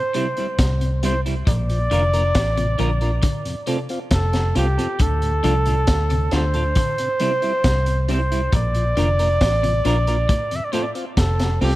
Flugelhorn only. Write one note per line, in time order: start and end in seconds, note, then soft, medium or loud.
0.00 1.04 C5 loud
1.04 1.20 C5 loud
1.49 3.82 D5 loud
4.13 4.53 A4 loud
4.57 5.04 G4 loud
5.02 6.33 A4 loud
6.35 8.06 C5 loud
8.11 8.51 C5 loud
8.56 10.57 D5 loud
10.56 10.66 E5 medium
10.65 10.74 D5 medium
10.73 10.84 C5 medium
10.83 10.91 D5 medium
11.19 11.59 A4 loud
11.63 11.76 G4 medium